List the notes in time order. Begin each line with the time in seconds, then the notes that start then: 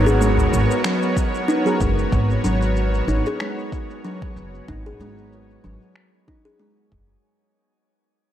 Already playing: G#1 F#3 B3 C#4 F#4 A#4 C#5, downlifter
0.06 G#4, shaker
0.21 G#3, shaker
0.37 udu, shaker
0.53 G#1, shaker
0.71 shaker
0.84 F#3, finger snap, shaker
1.03 shaker
1.17 kick, shaker
1.35 shaker
1.48 D#4, shaker
1.65 F#3 B3 C#4 G#4 A#4, shaker
1.81 F#1 G#3, kick, shaker
1.98 shaker
2.12 G#1, kick, shaker
2.30 shaker
2.44 G#1 F#3, shaker
2.62 shaker
2.76 shaker
2.94 shaker
3.08 G#1 D#4, shaker
3.26 G#4, shaker
3.40 G#3, finger snap, shaker
3.58 shaker
3.72 kick, shaker
3.91 shaker
4.05 F#3, shaker
4.22 kick, shaker
4.36 F#1, shaker
4.55 shaker
4.68 G#1 D#4, kick, shaker
4.86 G#4, shaker
5.00 G#1 G#3, shaker
5.18 shaker
5.33 shaker
5.50 shaker
5.64 G#1 F#3, shaker
5.81 shaker
5.96 finger snap, shaker
6.13 shaker
6.28 D#4, kick, shaker
6.45 G#4, shaker
6.60 G#3, shaker
6.92 F#1, kick